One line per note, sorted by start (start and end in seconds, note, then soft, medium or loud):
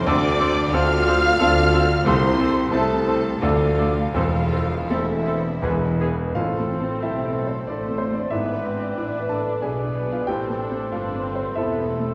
0.03 0.64 D2 medium
0.03 0.65 D2 medium
0.03 2.02 D2 loud
0.03 2.02 D3 medium
0.03 0.14 C4 medium
0.03 0.71 D4 loud
0.03 0.14 A4 medium
0.03 0.72 D5 loud
0.03 0.71 D6 loud
0.03 0.76 D6 loud
0.07 0.65 D2 loud
0.07 0.22 A4 medium
0.07 0.22 C5 medium
0.40 0.48 C4 medium
0.40 0.48 A4 medium
0.40 0.55 A4 medium
0.40 0.55 C5 medium
0.71 1.32 D2 medium
0.71 0.81 C4 medium
0.71 1.36 C4 medium
0.71 1.36 D4 medium
0.71 2.06 F4 loud
0.71 0.81 A4 medium
0.71 0.88 A4 medium
0.71 1.36 A4 medium
0.71 0.88 C5 medium
0.71 2.05 F5 loud
0.71 2.05 F6 loud
0.71 2.09 F6 loud
1.06 1.15 C4 medium
1.06 1.21 A4 medium
1.06 1.15 A4 medium
1.06 1.21 C5 medium
1.39 1.98 D2 medium
1.39 1.90 D2 medium
1.39 1.47 C4 medium
1.39 2.03 C4 medium
1.39 2.03 D4 medium
1.39 1.47 A4 medium
1.39 1.55 A4 medium
1.39 2.03 A4 medium
1.39 1.55 C5 medium
1.73 1.81 C4 medium
1.73 1.81 A4 medium
1.73 1.88 A4 medium
1.73 1.89 C5 medium
2.05 2.64 C2 medium
2.05 3.38 C2 loud
2.05 2.65 C2 medium
2.05 3.39 C3 medium
2.05 2.14 C4 medium
2.05 2.73 C4 loud
2.05 2.14 A4 medium
2.05 2.22 A4 medium
2.05 2.71 C5 loud
2.05 2.22 C5 medium
2.05 2.71 C6 loud
2.05 2.73 C6 loud
2.39 2.48 C4 medium
2.39 2.54 A4 medium
2.39 2.48 A4 medium
2.39 2.54 C5 medium
2.71 3.34 C2 medium
2.71 3.42 A3 loud
2.71 3.39 C4 medium
2.71 2.81 C4 medium
2.71 3.38 E4 medium
2.71 2.80 A4 medium
2.71 3.41 A4 medium
2.71 3.39 A4 medium
2.71 2.89 A4 medium
2.71 2.88 C5 medium
2.71 3.40 A5 loud
2.71 3.17 A5 medium
3.07 3.15 C4 medium
3.07 3.15 A4 medium
3.07 3.24 A4 medium
3.07 3.23 C5 medium
3.41 4.06 D2 medium
3.41 4.13 D2 medium
3.41 4.06 D2 medium
3.41 4.13 D3 medium
3.41 4.12 F3 medium
3.41 4.11 A3 medium
3.41 3.50 A3 medium
3.41 4.11 D4 medium
3.41 4.13 F4 medium
3.41 3.50 A4 medium
3.41 3.59 A4 medium
3.41 4.11 A4 medium
3.41 3.58 D5 medium
3.41 4.12 F5 medium
3.41 4.11 F5 medium
3.78 3.86 A3 medium
3.78 3.86 A4 medium
3.78 3.94 A4 medium
3.78 3.94 D5 medium
4.13 4.81 E1 medium
4.13 5.60 E1 medium
4.13 4.81 E1 medium
4.13 5.59 E2 medium
4.13 4.81 E2 medium
4.13 4.87 F3 medium
4.13 4.23 C4 medium
4.13 4.88 F4 medium
4.13 4.23 A4 medium
4.13 4.32 A4 medium
4.13 4.31 C5 medium
4.13 4.88 F5 medium
4.52 4.60 C4 medium
4.52 4.60 A4 soft
4.52 4.69 A4 medium
4.52 4.68 C5 medium
4.89 5.55 E1 medium
4.89 5.55 E2 medium
4.89 6.00 E3 medium
4.89 5.60 A3 soft
4.89 4.98 C4 medium
4.89 5.60 C4 medium
4.89 6.00 E4 medium
4.89 5.06 A4 medium
4.89 4.98 A4 medium
4.89 5.60 A4 medium
4.89 5.05 C5 medium
4.89 5.98 E5 medium
4.89 6.01 E5 medium
5.26 5.35 C4 soft
5.26 5.34 A4 soft
5.26 5.44 A4 medium
5.26 5.43 C5 medium
5.62 6.33 E1 medium
5.62 6.27 E1 medium
5.62 6.28 E1 medium
5.62 6.32 E2 medium
5.62 6.27 E2 medium
5.62 6.31 G#3 medium
5.62 6.31 B3 medium
5.62 5.72 B3 medium
5.62 5.80 G#4 medium
5.62 5.72 G#4 medium
5.62 5.79 B4 medium
5.62 6.31 B4 medium
6.00 6.08 B3 medium
6.00 6.08 G#4 medium
6.00 6.16 G#4 medium
6.00 6.16 B4 medium
6.34 6.98 A1 medium
6.34 6.99 A2 medium
6.34 6.98 A2 medium
6.34 7.31 A2 medium
6.34 8.27 A3 medium
6.34 8.27 C4 medium
6.34 7.64 C4 soft
6.34 6.98 F4 medium
6.34 6.97 A4 soft
6.34 6.98 A4 soft
6.34 6.97 C5 soft
6.34 7.64 C5 soft
6.34 6.97 F5 medium
6.59 6.93 A3 soft
6.82 7.16 C4 soft
7.00 7.67 B1 soft
7.00 7.66 B2 soft
7.00 7.64 E4 soft
7.00 7.35 G4 medium
7.00 8.28 A4 medium
7.00 7.37 A4 soft
7.00 8.33 C5 soft
7.00 7.64 E5 medium
7.25 7.59 C4 soft
7.33 7.67 A4 medium
7.47 7.81 C5 soft
7.66 8.30 A1 soft
7.66 8.31 A2 soft
7.66 8.31 A3 soft
7.66 7.98 D4 soft
7.66 8.03 A4 soft
7.66 8.31 C5 soft
7.66 7.97 D5 medium
7.66 8.30 E5 soft
7.89 7.99 C4 soft
7.98 8.15 C4 soft
7.98 8.14 C5 medium
8.12 8.32 A3 soft
8.12 8.30 D5 medium
8.17 8.31 D4 soft
8.30 8.95 G#1 medium
8.30 8.96 G#2 soft
8.30 8.96 G#2 medium
8.30 10.23 B3 medium
8.30 8.63 B3 soft
8.30 10.23 D4 medium
8.30 8.96 E4 soft
8.30 8.95 B4 soft
8.30 9.61 B4 soft
8.30 9.62 D5 soft
8.30 9.25 E5 medium
8.30 9.61 E5 soft
8.55 8.89 B3 soft
8.64 8.97 C4 soft
8.77 9.11 D4 soft
8.96 9.62 A1 soft
8.96 9.62 A2 soft
8.96 9.29 D4 soft
8.96 9.32 E4 soft
8.96 9.61 B4 soft
9.19 9.54 B4 soft
9.29 9.62 D4 soft
9.29 9.61 A4 soft
9.29 9.60 A5 medium
9.41 9.76 D5 soft
9.62 10.26 B1 soft
9.62 10.27 B2 soft
9.62 10.28 B3 soft
9.62 10.08 G#4 soft
9.62 10.27 G#4 soft
9.62 9.98 B4 soft
9.62 10.30 B4 soft
9.62 10.30 D5 soft
9.62 10.28 D5 soft
9.62 10.08 G#5 soft
9.84 10.19 D4 soft
10.06 10.28 B3 soft
10.12 10.27 F4 soft
10.12 10.27 F5 soft
10.27 10.91 A1 medium
10.27 10.90 A2 medium
10.27 10.91 A2 soft
10.27 12.14 A3 medium
10.27 10.60 C4 soft
10.27 12.14 C4 medium
10.27 10.88 G4 medium
10.27 10.92 A4 soft
10.27 11.55 A4 medium
10.27 10.90 C5 soft
10.27 11.57 C5 soft
10.27 10.88 G5 medium
10.50 10.84 A3 soft
10.60 10.90 D4 soft
10.71 11.05 C4 soft
10.91 11.57 G1 soft
10.91 11.57 G2 soft
10.91 11.23 D4 soft
10.91 11.53 F4 soft
10.91 11.27 A4 soft
10.91 11.56 B4 soft
10.91 12.14 B4 soft
10.91 11.53 F5 medium
11.14 11.48 C4 soft
11.24 11.56 C4 soft
11.35 11.69 C5 soft
11.55 12.14 E1 soft
11.55 12.14 E2 soft
11.55 11.89 B3 soft
11.55 12.14 E4 soft
11.55 12.14 A4 soft
11.55 11.91 A4 soft
11.55 12.14 C5 soft
11.55 12.14 E5 medium
11.79 12.12 C4 soft
11.89 12.14 A3 medium
11.99 12.14 A3 soft